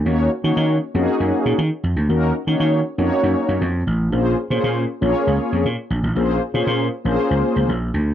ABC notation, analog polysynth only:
X:1
M:4/4
L:1/16
Q:1/4=118
K:Bbm
V:1 name="Analog polysynth"
[B,DEGd]2 z [B,DEGd]3 z [B,DEGA]4- [B,DEGA] z4 | [B,DEGB]2 z [B,DEGd]3 z [B,DEGd]4- [B,DEGd] z4 | [B,DFAc]2 z [B,DFAc]3 z [B,DFAd]4- [B,DFAd] z4 | [B,DFAc]2 z [B,DFAc]3 z [B,DFAc]4- [B,DFAc] z4 |]